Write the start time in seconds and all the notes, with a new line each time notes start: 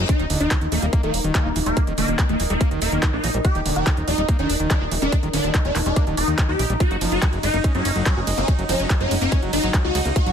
0.09 D#3 D#4, kick, closed hi-hat
0.19 D#1 D#3, closed hi-hat
0.25 D#5
0.30 D#1 D3 A#4, open hi-hat
0.40 D#1 D#3 D#4, closed hi-hat
0.51 D3, kick, clap, closed hi-hat
0.61 D#1 D#3, closed hi-hat
0.72 D#1 E3 A#3, open hi-hat
0.82 D#1 G3, closed hi-hat
0.93 A#3, kick, closed hi-hat
1.03 D#1 D#3 A#3, closed hi-hat
1.14 D#1, open hi-hat
1.24 D#1 D#3, closed hi-hat
1.35 D#3 A#3, kick, clap, closed hi-hat
1.45 D#1 D#4
1.56 D#1 E3, open hi-hat
1.66 D#1 G3 A#3, closed hi-hat
1.77 D#3, kick, closed hi-hat
1.87 D#1 D#3, closed hi-hat
1.98 D#1 D3 A#3, open hi-hat
2.08 D#1 D#3, closed hi-hat
2.19 D3, kick, clap, closed hi-hat
2.29 D#1 D#3 A#3, closed hi-hat
2.40 D#1 E3, open hi-hat
2.50 D#1 G3 A#3, closed hi-hat
2.61 A#3, kick, closed hi-hat
2.71 D#1 D#3, closed hi-hat
2.82 D#1 A#3, open hi-hat
2.92 E1 D#3, closed hi-hat
3.03 D#3, kick, clap, closed hi-hat
3.13 A#1 D#4
3.24 A#1 E3, open hi-hat
3.34 A#1 G3, closed hi-hat
3.45 D#3 G4, kick, closed hi-hat
3.55 D#1 D#3, closed hi-hat
3.66 D#1 D3, open hi-hat
3.76 D#1 D#3 G4, closed hi-hat
3.87 D3, kick, clap, closed hi-hat
3.97 D#1 D#3, closed hi-hat
4.08 D#1 E3 D#4, open hi-hat
4.18 D#1 G3, closed hi-hat
4.29 A#3, kick, closed hi-hat
4.39 D#1 D#3 D4, closed hi-hat
4.50 D#1, open hi-hat
4.60 D#1 D#3
4.71 D#3 D4, kick, clap, closed hi-hat
4.81 D#1 D#4
4.92 D#1 E3, open hi-hat
5.02 D#1 G3 D4, closed hi-hat
5.12 D#3, kick, closed hi-hat
5.23 D#1 D#3, closed hi-hat
5.33 D#1 D3 D4, open hi-hat
5.44 D#1 D#3, closed hi-hat
5.54 D3, kick, clap, closed hi-hat
5.65 D#1 D#3 D4, closed hi-hat
5.75 D#1 E3, clap, open hi-hat
5.86 D#1 G3 D4, closed hi-hat
5.96 A#3, kick, closed hi-hat
6.07 D#1 D#3, closed hi-hat
6.17 E1 D#4, open hi-hat
6.28 D#2 D#3, closed hi-hat
6.38 D#3, kick, clap, closed hi-hat
6.49 D#2 D#4 G4
6.59 A#1 E3, open hi-hat
6.70 A#1 G3, closed hi-hat
6.80 F#3 F#4, kick, closed hi-hat
6.87 C#5
6.91 F#1 F#3, closed hi-hat
7.01 F#1 F3, open hi-hat, ride
7.12 F#1 F#3 F#4, closed hi-hat
7.22 F3, kick, clap, closed hi-hat
7.33 F#1 F#3 F#5, closed hi-hat
7.43 F#1 G#3 D#4, open hi-hat, ride
7.54 F#1 A#3, closed hi-hat
7.64 C#4, kick, closed hi-hat
7.75 F#1 F#3 C#4, closed hi-hat
7.85 F#1, open hi-hat, ride
7.96 F#1 F#3, closed hi-hat
8.06 F#3 C#4, kick, clap, closed hi-hat
8.17 F#1 F#4
8.27 F#1 G#3, open hi-hat, ride
8.38 F#1 A#3 C#4, closed hi-hat
8.48 F#3, kick, closed hi-hat
8.59 F#1 F#3, closed hi-hat
8.69 F#1 F3 C#4, open hi-hat, ride
8.80 F#1 F#3, closed hi-hat
8.90 F3, kick, clap, closed hi-hat
9.01 F#1 F#3 C#4, closed hi-hat
9.11 F#1 G#3, open hi-hat, ride
9.22 F#1 A#3 C#4, closed hi-hat
9.32 C#4, kick, closed hi-hat
9.43 F#1 F#3, closed hi-hat
9.53 F#1 D#4, open hi-hat, ride
9.64 G#1 F#3, closed hi-hat
9.74 F#3, kick, clap, closed hi-hat
9.84 C#2 F#4
9.95 C#2 G#3, open hi-hat, ride
10.05 C#2 A#3, closed hi-hat
10.16 F#3 F#4, kick, closed hi-hat
10.26 F#1 F#3, closed hi-hat